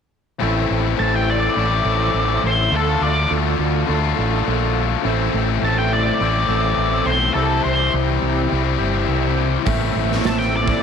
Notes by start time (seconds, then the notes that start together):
0.40 A1 A2 E3 A3 C4 E4 A4
0.71 A1
0.98 A1 A3 C4 E4 A4 A5
1.16 G5
1.30 D5
1.56 A1 A2 E3 A3 C4 E4
1.84 A1 A3 C4 E4 A4
2.14 A1
2.44 A1 C5
2.71 D2 D3 A3 D4 F4 A4
2.76 A4
3.01 D2 D5
3.29 D2 A3 D4 F4 A4
3.59 D2
3.86 D2 D3 A3 D4
3.90 F4
4.15 A1 A3 D4 F4 A4
4.48 A#1
5.01 A2 E3 A3 C4 E4 A4
5.05 A1 A3 C4 E4
5.34 A1
5.59 A1 A3 C4 E4 A4
5.65 A5
5.78 G5
5.93 D5
6.20 A1 A2 E3 A3 C4 E4
6.47 A1 A3 C4 E4 A4
6.77 A1
7.06 B1 C5
7.33 C2 C3 E3 G3 C4 E4 G4 A4
7.38 E4
7.64 C2 C5
7.93 C2 G3 C4 E4 G4
8.22 C2
8.50 C2 C3 E3 G3 C4 E4
8.77 G1 G3 C4 E4 G4
9.08 C2 E5
9.37 G5
9.64 A1 A2 E3 A3 C4 E4 A4, kick, open hi-hat
9.69 E4
9.96 A1
10.12 snare
10.22 A1 A3 C4 E4 A4, snare, open hi-hat
10.26 A5
10.39 G5, snare
10.57 D5
10.68 kick